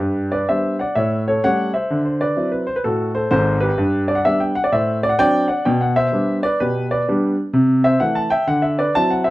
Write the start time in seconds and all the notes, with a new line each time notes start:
Already playing: G4 B4
0.00 G2
0.32 B4 D5
0.49 G3 B3 D4 C5 E5
0.79 D5 F#5
0.95 A2 C#5 E5
1.28 A4 C#5
1.44 G3 A3 C#4 C#5 F#5
1.74 C5 E5
1.90 D3
2.05 C5
2.21 B4 D5
2.36 F#3 C4 E4
2.52 B4
2.67 C5
2.76 B4
2.84 A2 F#4 A4
3.15 A4 C5
3.31 G#1 G#2 A4 C5
3.60 G4 B4
3.78 G2
4.08 D5
4.15 F#5
4.25 G3 B3 D4 E5
4.40 G5
4.55 F#5
4.64 D5
4.72 A2 C5 E5
5.03 D5
5.09 F#5
5.19 F#3 C4 D4 D5 G5
5.48 D5 F#5
5.65 B2 G5
5.81 F#5
5.96 C5 E5
6.12 G3 B3 D4
6.43 B4 D5
6.60 B2 G4 B4
6.91 B4 D5
7.08 G3 B3 D4
7.53 C3
7.84 C5 E5
8.00 E3 A3 E4 F#5
8.15 A5
8.30 E5 G5
8.47 D3 F#5
8.62 E5
8.79 B4 D5
8.95 F#3 C4 E4 A5
9.10 F#5
9.24 C5 E5